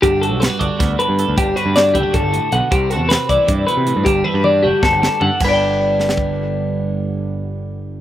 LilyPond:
<<
  \new Staff \with { instrumentName = "Clean electric guitar" } { \time 7/8 \key g \major \tempo 4 = 156 g'8 a'8 b'8 d''4 b'4 | g'8 b'8 d''8 g'8 a'4 fis''8 | g'8 a'8 b'8 d''4 b'4 | g'8 b'8 d''8 g'8 a'4 fis''8 |
<b' d'' g''>2.~ <b' d'' g''>8~ | <b' d'' g''>2.~ <b' d'' g''>8 | }
  \new Staff \with { instrumentName = "Clean electric guitar" } { \time 7/8 \key g \major << { d'8 fis'8 b16 d'16 fis'8 b8 d'8 a'8 | d'8 fis'8 d'8 e'16 fis'4.~ fis'16 | c'8 fis'8 c'8 e'2 | d'8 e'16 fis'16 d'8 fis'8 b8 d'8 a'8 |
<d b d'>2.~ <d b d'>8~ | <d b d'>2.~ <d b d'>8 | } \\ { g,4. d4 g,4 | g,4. d8 g,8 a,8 b,8 | c4. e8 c8 b,8 a,8 | g,4. d4 g,4 |
g,2.~ g,8~ | g,2.~ g,8 | } >> }
  \new Staff \with { instrumentName = "Picked electric bass" } { \clef bass \time 7/8 \key g \major g,,8. b,,8 r16 g,,16 r16 d,8 r16 g,8 d,16 | g,,8 r16 g,8. fis,,16 r16 g,,16 g,,8 r16 b,,16 r16 | c,8. e,8 r16 c,16 r16 g,8 r16 c8 g,16 | g,,8 r16 g,8. fis,,16 r16 g,,16 g,,8 r16 g,16 r16 |
g,,2.~ g,,8~ | g,,2.~ g,,8 | }
  \new DrumStaff \with { instrumentName = "Drums" } \drummode { \time 7/8 <hh bd>8 hh8 <hh sn>8 <hh bd>8 <hh bd sn>8 hh8 hh8 | <hh bd>8 hh8 <hh sn>8 <hh bd>8 <hh bd>8 hh8 hh8 | <hh bd>8 hh8 <hh sn>8 <hh bd>8 <hh bd>8 hh8 hh8 | <hh bd>8 tommh8 tommh4 <bd sn>8 sn8 tomfh8 |
<cymc bd>4 r8 sn16 sn16 bd4. | r4 r4 r4. | }
>>